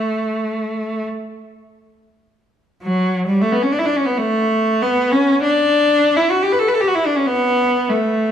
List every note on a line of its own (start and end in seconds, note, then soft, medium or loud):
0.00 1.07 A3 medium
2.83 3.20 F#3 medium
3.27 3.40 G3 medium
3.41 3.52 A3 medium
3.52 3.60 B3 soft
3.62 3.69 C#4 soft
3.72 3.77 D4 medium
3.79 3.85 E4 medium
3.86 3.94 D4 medium
3.96 4.05 C#4 medium
4.06 4.15 B3 medium
4.18 4.79 A3 medium
4.82 5.11 B3 medium
5.12 5.42 C#4 medium
5.42 6.14 D4 medium
6.16 6.30 E4 medium
6.30 6.41 F#4 medium
6.42 6.51 G4 medium
6.52 6.60 B4 medium
6.59 6.67 A4 medium
6.68 6.74 B4 medium
6.74 6.81 A4 medium
6.81 6.88 G4 medium
6.88 6.96 F#4 soft
6.95 7.05 E4 medium
7.06 7.16 D4 medium
7.16 7.26 C#4 medium
7.26 7.88 B3 medium
7.89 8.32 A3 medium